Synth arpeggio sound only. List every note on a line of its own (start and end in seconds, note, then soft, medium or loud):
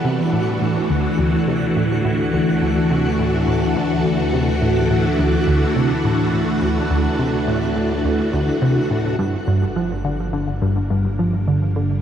0.05 0.21 C3 medium
0.33 0.58 A2 medium
0.61 0.78 A2 medium
0.90 1.07 D2 medium
1.19 1.35 D2 medium
1.48 1.64 C3 medium
1.76 2.01 A2 medium
2.05 2.21 A2 medium
2.33 2.50 D2 medium
2.62 2.78 D2 medium
2.91 3.07 C3 medium
3.19 3.44 A2 medium
3.48 3.64 A2 medium
3.76 3.93 D2 loud
4.05 4.21 D2 loud
4.33 4.50 C3 medium
4.62 4.86 A2 medium
4.91 5.07 A2 medium
5.19 5.35 D2 loud
5.48 5.64 D2 loud
5.76 5.92 C3 medium
6.05 6.29 A2 medium
6.33 6.50 A2 medium
6.62 6.78 D2 loud
6.90 7.07 D2 loud
7.19 7.35 C3 medium
7.48 7.72 A2 medium
7.76 7.93 A2 medium
8.05 8.21 D2 medium
8.33 8.50 D2 loud
8.62 8.78 C3 medium
8.91 9.15 A2 medium
9.19 9.35 G2 loud
9.48 9.64 G2 medium
9.76 9.93 F3 medium
10.05 10.29 D3 medium
10.33 10.50 D3 medium
10.62 10.78 G2 loud
10.90 11.07 G2 loud
11.19 11.35 F3 medium
11.48 11.72 D3 medium
11.76 11.92 D3 medium